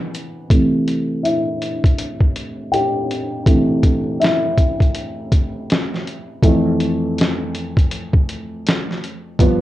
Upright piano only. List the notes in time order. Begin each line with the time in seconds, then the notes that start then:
Already playing: C3 E3 B3
0.51 C3 E3 A3
1.23 E4 E5
2.72 G4 G5
3.47 C3 E3 A3
4.20 E4 E5
6.43 F2 E3 A3
9.39 G2 F3 B3